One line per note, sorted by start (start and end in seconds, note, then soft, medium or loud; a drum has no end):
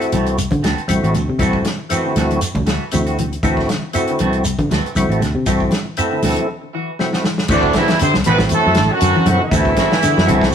0.00 0.36 A3 medium
0.00 0.37 C4 medium
0.00 0.37 E4 medium
0.00 0.37 F#4 loud
0.00 closed hi-hat soft
0.12 0.47 C2 medium
0.12 0.28 C3 medium
0.12 0.29 E3 medium
0.12 0.29 A3 medium
0.12 0.30 C4 medium
0.12 closed hi-hat soft
0.12 high conga medium
0.12 low conga medium
0.12 shekere soft
0.26 closed hi-hat soft
0.38 0.53 C3 medium
0.38 closed hi-hat medium
0.38 shekere medium
0.51 0.62 D3 medium
0.51 kick medium
0.51 closed hi-hat soft
0.51 high conga medium
0.51 low conga medium
0.63 0.76 D2 medium
0.63 0.79 D3 medium
0.63 0.80 E3 medium
0.63 0.80 A3 medium
0.63 0.80 C4 medium
0.63 0.80 F#4 medium
0.63 snare medium
0.63 closed hi-hat medium
0.63 shekere soft
0.78 closed hi-hat soft
0.88 1.01 C2 medium
0.88 0.98 D3 medium
0.88 1.13 A3 medium
0.88 1.13 C4 medium
0.88 1.14 E4 medium
0.88 1.14 F#4 medium
0.88 closed hi-hat medium
0.88 high conga medium
0.88 shekere medium
1.03 1.13 A1 medium
1.03 1.10 E3 medium
1.03 1.18 A3 soft
1.03 1.18 C4 soft
1.03 1.18 F#4 medium
1.03 closed hi-hat soft
1.14 1.27 D2 medium
1.14 1.23 C3 medium
1.14 closed hi-hat medium
1.14 high conga medium
1.14 low conga medium
1.14 shekere soft
1.29 1.38 C3 medium
1.29 1.36 D3 medium
1.39 1.61 C2 medium
1.39 1.55 E3 medium
1.39 1.57 E3 medium
1.39 1.64 A3 medium
1.39 1.57 A3 medium
1.39 1.64 C4 medium
1.39 1.57 C4 medium
1.39 1.65 E4 medium
1.39 1.65 F#4 medium
1.39 1.57 F#4 medium
1.39 kick medium
1.39 closed hi-hat medium
1.39 shekere medium
1.53 kick medium
1.64 1.81 C3 medium
1.64 snare medium
1.64 closed hi-hat soft
1.64 high conga medium
1.64 shekere soft
1.89 2.07 E3 medium
1.89 2.40 A3 medium
1.89 2.07 A3 medium
1.89 2.40 C4 medium
1.89 2.08 C4 medium
1.89 2.40 E4 medium
1.89 2.40 F#4 loud
1.89 2.08 F#4 medium
1.89 closed hi-hat medium
1.89 high conga medium
1.89 shekere medium
2.06 2.12 D3 medium
2.16 2.38 D2 medium
2.16 2.26 D3 medium
2.16 2.33 E3 medium
2.16 2.33 A3 medium
2.16 2.33 C4 medium
2.16 2.34 F#4 medium
2.16 snare soft
2.16 closed hi-hat soft
2.16 high conga medium
2.16 low conga medium
2.16 shekere soft
2.30 2.46 F#3 medium
2.30 closed hi-hat soft
2.41 closed hi-hat medium
2.41 shekere medium
2.55 2.77 D2 medium
2.55 kick medium
2.55 high conga loud
2.55 low conga medium
2.66 2.83 D3 medium
2.66 2.83 E3 medium
2.66 2.83 A3 medium
2.66 2.84 F#4 medium
2.66 muted clean electric guitar stroke medium
2.66 snare medium
2.66 closed hi-hat medium
2.66 shekere soft
2.91 3.37 D2 medium
2.91 3.08 C3 medium
2.91 3.17 A3 medium
2.91 3.17 C4 medium
2.91 3.18 E4 medium
2.91 3.18 F#4 medium
2.91 closed hi-hat medium
2.91 high conga medium
2.91 shekere medium
3.06 3.21 C4 soft
3.06 3.21 F#4 medium
3.06 muted clean electric guitar stroke soft
3.06 closed hi-hat soft
3.18 3.34 E3 medium
3.18 closed hi-hat soft
3.18 high conga medium
3.18 low conga medium
3.18 shekere soft
3.33 closed hi-hat soft
3.43 3.65 D2 medium
3.43 3.60 E3 medium
3.43 3.59 E3 medium
3.43 3.68 A3 medium
3.43 3.60 A3 medium
3.43 3.69 C4 medium
3.43 3.60 C4 medium
3.43 3.69 E4 medium
3.43 3.60 F#4 medium
3.43 3.69 F#4 medium
3.43 kick medium
3.43 closed hi-hat medium
3.43 shekere medium
3.57 kick medium
3.57 snare soft
3.69 3.84 D3 medium
3.69 snare medium
3.69 closed hi-hat soft
3.69 high conga medium
3.69 shekere soft
3.93 4.04 C3 medium
3.93 4.11 E3 medium
3.93 4.43 A3 medium
3.93 4.11 A3 medium
3.93 4.44 C4 medium
3.93 4.11 C4 medium
3.93 4.44 E4 medium
3.93 4.44 F#4 loud
3.93 4.11 F#4 medium
3.93 closed hi-hat medium
3.93 shekere medium
4.07 4.16 D3 medium
4.07 closed hi-hat soft
4.19 4.54 C2 medium
4.19 4.36 C3 medium
4.19 4.36 E3 medium
4.19 4.37 A3 medium
4.19 4.36 C4 medium
4.19 4.37 F#4 medium
4.19 closed hi-hat soft
4.19 high conga medium
4.19 low conga medium
4.19 shekere soft
4.33 closed hi-hat soft
4.44 4.61 C3 medium
4.44 closed hi-hat medium
4.44 shekere medium
4.58 4.69 D3 medium
4.58 kick medium
4.58 closed hi-hat soft
4.58 high conga medium
4.71 4.83 D2 medium
4.71 4.86 D3 medium
4.71 4.88 E3 medium
4.71 4.88 A3 medium
4.71 4.88 C4 medium
4.71 4.88 F#4 medium
4.71 snare medium
4.71 closed hi-hat medium
4.71 shekere soft
4.86 closed hi-hat soft
4.95 5.08 C2 medium
4.95 5.05 D3 medium
4.95 5.21 A3 medium
4.95 5.21 C4 medium
4.95 5.21 E4 medium
4.95 5.22 F#4 medium
4.95 closed hi-hat medium
4.95 high conga medium
4.95 shekere medium
5.09 5.19 A1 medium
5.09 5.17 E3 medium
5.09 5.25 A3 soft
5.09 5.25 C4 soft
5.09 muted clean electric guitar stroke soft
5.09 closed hi-hat soft
5.20 5.33 D2 medium
5.20 5.30 C3 medium
5.20 snare soft
5.20 closed hi-hat soft
5.20 low conga medium
5.20 shekere soft
5.35 5.45 C3 medium
5.35 5.43 D3 medium
5.46 5.68 C2 medium
5.46 5.63 E3 medium
5.46 5.61 E3 medium
5.46 5.71 A3 medium
5.46 5.63 A3 medium
5.46 5.72 C4 medium
5.46 5.64 C4 medium
5.46 5.72 E4 medium
5.46 5.72 F#4 medium
5.46 5.64 F#4 medium
5.46 kick medium
5.46 closed hi-hat medium
5.46 shekere medium
5.60 kick medium
5.60 high conga medium
5.71 muted clean electric guitar stroke medium
5.71 snare medium
5.71 closed hi-hat soft
5.71 high conga medium
5.71 shekere soft
5.97 6.14 E3 medium
5.97 6.47 A3 medium
5.97 6.47 C4 medium
5.97 6.15 C4 medium
5.97 6.48 E4 medium
5.97 6.15 F#4 medium
5.97 6.48 A4 medium
5.97 muted clean electric guitar stroke medium
5.97 closed hi-hat medium
5.97 shekere medium
6.12 6.19 D3 medium
6.22 6.35 D2 medium
6.22 6.32 D3 medium
6.22 6.40 E3 medium
6.22 6.40 A3 medium
6.22 6.40 C4 medium
6.22 6.40 F#4 medium
6.22 open hi-hat medium
6.22 high conga medium
6.22 low conga medium
6.22 shekere soft
6.36 6.52 F#3 medium
6.36 closed hi-hat soft
6.73 6.90 E3 medium
6.73 6.89 E3 medium
6.73 6.91 F#4 medium
6.73 muted clean electric guitar stroke medium
6.99 7.14 C3 medium
6.99 7.24 A3 medium
6.99 7.24 C4 medium
6.99 7.24 E4 medium
6.99 7.25 F#4 medium
6.99 snare soft
7.13 7.28 A3 soft
7.13 7.28 C4 soft
7.13 7.28 F#4 medium
7.13 snare medium
7.24 7.41 E3 medium
7.24 snare medium
7.38 snare medium
7.48 7.71 D2 medium
7.48 7.74 D2 medium
7.48 7.75 D3 medium
7.48 7.67 E3 medium
7.48 7.65 E3 medium
7.48 7.88 A3 medium
7.48 7.67 A3 medium
7.48 7.88 C4 medium
7.48 7.67 C4 medium
7.48 7.75 D4 loud
7.48 7.89 E4 medium
7.48 7.89 F#4 medium
7.48 7.67 F#4 medium
7.48 kick medium
7.48 crash medium
7.48 shekere medium
7.53 7.75 D5 medium
7.63 kick medium
7.73 8.00 E2 medium
7.73 7.91 D3 medium
7.73 7.99 E3 medium
7.73 7.92 E3 medium
7.73 7.92 A3 medium
7.73 7.92 C4 medium
7.73 7.99 E4 medium
7.73 kick medium
7.73 snare medium
7.73 closed hi-hat medium
7.73 high conga medium
7.73 shekere soft
7.77 7.93 F#4 medium
7.77 8.00 E5 medium
7.88 muted fingered electric bass stroke soft
7.88 snare medium
7.88 closed hi-hat soft
7.88 high conga medium
7.99 8.09 C3 medium
7.99 8.13 C3 medium
7.99 8.14 D3 medium
7.99 8.13 C4 medium
7.99 8.13 C5 medium
7.99 8.14 C6 medium
7.99 closed hi-hat medium
7.99 shekere medium
8.14 8.25 C2 medium
8.14 8.22 D3 medium
8.14 snare medium
8.24 8.48 A1 medium
8.24 8.37 B2 medium
8.24 8.41 C3 medium
8.24 8.43 E3 medium
8.24 8.75 A3 medium
8.24 8.43 A3 medium
8.24 8.39 B3 medium
8.24 8.76 C4 medium
8.24 8.43 C4 medium
8.24 8.76 E4 medium
8.24 8.76 F#4 medium
8.24 8.43 F#4 medium
8.24 8.39 B4 loud
8.24 8.38 B5 medium
8.24 closed hi-hat medium
8.24 high conga medium
8.24 low conga medium
8.24 shekere soft
8.39 kick medium
8.39 snare medium
8.49 8.89 A2 medium
8.49 8.66 C3 medium
8.49 closed hi-hat medium
8.49 high conga medium
8.49 shekere medium
8.54 8.89 A3 loud
8.54 8.89 A4 loud
8.54 8.95 A5 medium
8.65 8.78 F#2 medium
8.65 8.80 A3 soft
8.65 8.80 C4 soft
8.65 8.80 F#4 medium
8.74 8.89 A1 medium
8.74 8.91 D3 medium
8.74 snare medium
8.74 closed hi-hat medium
8.74 shekere soft
8.91 9.29 F#2 medium
8.91 9.28 F#3 medium
8.91 9.28 F#4 loud
8.91 9.29 F#5 medium
9.00 9.14 F#2 loud
9.00 9.10 D3 medium
9.00 9.18 E3 medium
9.00 9.19 A3 medium
9.00 9.19 C4 medium
9.00 9.19 F#4 medium
9.00 closed hi-hat medium
9.00 shekere medium
9.16 9.22 E3 medium
9.16 high conga medium
9.26 9.39 F#2 loud
9.26 9.35 C3 medium
9.26 9.41 F#3 medium
9.26 9.40 A3 medium
9.26 9.41 C4 medium
9.26 9.41 E4 medium
9.26 9.41 F#4 medium
9.26 9.42 F#5 medium
9.26 closed hi-hat medium
9.26 high conga loud
9.26 low conga medium
9.26 shekere soft
9.31 9.43 F#2 medium
9.41 10.55 E2 medium
9.41 9.48 D3 medium
9.41 10.55 E3 medium
9.41 10.55 E4 medium
9.41 10.55 E5 medium
9.51 9.74 D2 loud
9.51 9.67 E3 medium
9.51 9.69 E3 medium
9.51 9.90 A3 medium
9.51 9.69 A3 medium
9.51 9.90 C4 medium
9.51 9.70 C4 medium
9.51 9.90 E4 medium
9.51 9.91 F#4 medium
9.51 9.70 F#4 medium
9.51 kick medium
9.51 closed hi-hat medium
9.51 shekere medium
9.65 kick medium
9.76 9.95 E3 medium
9.76 9.95 A3 medium
9.76 9.95 C4 medium
9.76 9.95 F#4 medium
9.76 kick medium
9.76 snare medium
9.76 closed hi-hat medium
9.76 high conga medium
9.76 shekere soft
9.92 snare medium
10.02 10.15 D3 medium
10.02 snare soft
10.02 closed hi-hat medium
10.02 shekere medium
10.17 10.27 F#2 medium
10.17 10.24 D3 medium
10.17 snare medium
10.27 10.55 C2 medium
10.27 10.36 D3 medium
10.27 10.45 E3 medium
10.27 10.55 A3 medium
10.27 10.45 A3 medium
10.27 10.55 C4 medium
10.27 10.45 C4 medium
10.27 10.55 E4 medium
10.27 10.55 F#4 medium
10.27 10.46 F#4 medium
10.27 closed hi-hat medium
10.27 high conga medium
10.27 low conga medium
10.27 shekere soft
10.41 10.55 F#3 medium
10.41 kick medium
10.41 snare medium